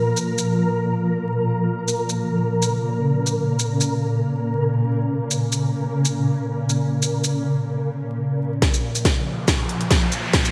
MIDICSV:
0, 0, Header, 1, 5, 480
1, 0, Start_track
1, 0, Key_signature, -5, "minor"
1, 0, Tempo, 428571
1, 56, Time_signature, 4, 2, 24, 8
1, 11776, End_track
2, 0, Start_track
2, 0, Title_t, "Synth texture"
2, 0, Program_c, 0, 99
2, 0, Note_on_c, 0, 70, 81
2, 9666, Note_off_c, 0, 70, 0
2, 11776, End_track
3, 0, Start_track
3, 0, Title_t, "Ambient pad"
3, 0, Program_c, 1, 92
3, 0, Note_on_c, 1, 46, 69
3, 0, Note_on_c, 1, 53, 70
3, 1980, Note_on_c, 1, 49, 69
3, 2000, Note_off_c, 1, 53, 0
3, 9645, Note_off_c, 1, 46, 0
3, 9657, Note_on_c, 1, 53, 73
3, 9658, Note_on_c, 1, 46, 71
3, 9684, Note_off_c, 1, 49, 0
3, 11776, Note_off_c, 1, 46, 0
3, 11776, Note_off_c, 1, 53, 0
3, 11776, End_track
4, 0, Start_track
4, 0, Title_t, "Riser"
4, 0, Program_c, 2, 103
4, 9656, Note_on_c, 2, 60, 74
4, 11776, Note_off_c, 2, 60, 0
4, 11776, End_track
5, 0, Start_track
5, 0, Title_t, "Drums"
5, 187, Note_on_c, 9, 82, 47
5, 299, Note_off_c, 9, 82, 0
5, 428, Note_on_c, 9, 82, 45
5, 540, Note_off_c, 9, 82, 0
5, 2105, Note_on_c, 9, 82, 48
5, 2217, Note_off_c, 9, 82, 0
5, 2345, Note_on_c, 9, 82, 47
5, 2457, Note_off_c, 9, 82, 0
5, 2937, Note_on_c, 9, 82, 47
5, 3049, Note_off_c, 9, 82, 0
5, 3656, Note_on_c, 9, 82, 47
5, 3768, Note_off_c, 9, 82, 0
5, 4024, Note_on_c, 9, 82, 49
5, 4136, Note_off_c, 9, 82, 0
5, 4263, Note_on_c, 9, 82, 50
5, 4375, Note_off_c, 9, 82, 0
5, 5944, Note_on_c, 9, 82, 51
5, 6056, Note_off_c, 9, 82, 0
5, 6185, Note_on_c, 9, 82, 51
5, 6297, Note_off_c, 9, 82, 0
5, 6777, Note_on_c, 9, 82, 51
5, 6889, Note_off_c, 9, 82, 0
5, 7497, Note_on_c, 9, 82, 51
5, 7609, Note_off_c, 9, 82, 0
5, 7866, Note_on_c, 9, 82, 50
5, 7978, Note_off_c, 9, 82, 0
5, 8108, Note_on_c, 9, 82, 52
5, 8220, Note_off_c, 9, 82, 0
5, 9655, Note_on_c, 9, 38, 45
5, 9655, Note_on_c, 9, 42, 78
5, 9657, Note_on_c, 9, 36, 93
5, 9767, Note_off_c, 9, 38, 0
5, 9767, Note_off_c, 9, 42, 0
5, 9769, Note_off_c, 9, 36, 0
5, 9786, Note_on_c, 9, 82, 50
5, 9898, Note_off_c, 9, 82, 0
5, 10026, Note_on_c, 9, 42, 53
5, 10026, Note_on_c, 9, 82, 49
5, 10137, Note_off_c, 9, 42, 0
5, 10137, Note_on_c, 9, 36, 88
5, 10137, Note_on_c, 9, 38, 49
5, 10137, Note_on_c, 9, 42, 80
5, 10138, Note_off_c, 9, 82, 0
5, 10249, Note_off_c, 9, 36, 0
5, 10249, Note_off_c, 9, 38, 0
5, 10249, Note_off_c, 9, 42, 0
5, 10616, Note_on_c, 9, 36, 89
5, 10616, Note_on_c, 9, 38, 52
5, 10616, Note_on_c, 9, 42, 80
5, 10616, Note_on_c, 9, 82, 50
5, 10728, Note_off_c, 9, 36, 0
5, 10728, Note_off_c, 9, 38, 0
5, 10728, Note_off_c, 9, 42, 0
5, 10728, Note_off_c, 9, 82, 0
5, 10856, Note_on_c, 9, 42, 52
5, 10968, Note_off_c, 9, 42, 0
5, 10984, Note_on_c, 9, 42, 51
5, 11094, Note_off_c, 9, 42, 0
5, 11094, Note_on_c, 9, 38, 51
5, 11094, Note_on_c, 9, 42, 76
5, 11097, Note_on_c, 9, 36, 94
5, 11206, Note_off_c, 9, 38, 0
5, 11206, Note_off_c, 9, 42, 0
5, 11209, Note_off_c, 9, 36, 0
5, 11334, Note_on_c, 9, 42, 53
5, 11334, Note_on_c, 9, 82, 50
5, 11446, Note_off_c, 9, 42, 0
5, 11446, Note_off_c, 9, 82, 0
5, 11574, Note_on_c, 9, 38, 57
5, 11574, Note_on_c, 9, 42, 79
5, 11577, Note_on_c, 9, 36, 95
5, 11686, Note_off_c, 9, 38, 0
5, 11686, Note_off_c, 9, 42, 0
5, 11689, Note_off_c, 9, 36, 0
5, 11704, Note_on_c, 9, 82, 50
5, 11776, Note_off_c, 9, 82, 0
5, 11776, End_track
0, 0, End_of_file